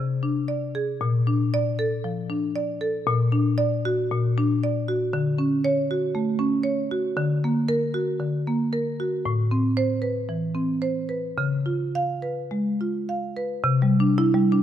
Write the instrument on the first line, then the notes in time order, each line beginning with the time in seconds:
marimba
Already playing: C3 G#4
0.23 D4
0.48 D5
0.75 G#4
1.01 A#2
1.27 D4
1.54 D5
1.79 A4
2.04 F3
2.30 D4
2.56 D5
2.81 A4
3.07 A#2
3.32 D4
3.58 D5
3.85 F#4
4.11 A#2
4.38 D4
4.63 D5
4.88 F#4
5.13 D3
5.38 C#4
5.64 C#5
5.91 F#4
6.15 A3
6.39 C#4
6.63 C#5
6.91 F#4
7.17 D3
7.44 A#3
7.69 A#4
7.94 F#4
8.20 D3
8.47 A#3
8.73 A#4
9.00 F#4
9.26 A2
9.51 C4
9.77 C5
10.02 B4
10.29 E3
10.55 C4
10.82 C5
11.09 B4
11.38 C#3
11.66 F4
11.95 F5
12.22 B4
12.51 G#3
12.81 F4
13.09 F5
13.37 B4
13.64 C3
13.82 G3
14.00 D4
14.18 E4
14.34 G3
14.52 D4